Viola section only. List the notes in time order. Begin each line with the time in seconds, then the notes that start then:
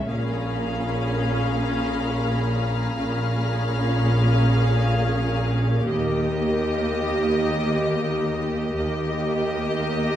0.10 C#4 G#4
2.99 C#4 G#4
5.87 A#3 G4
8.76 A#3 G4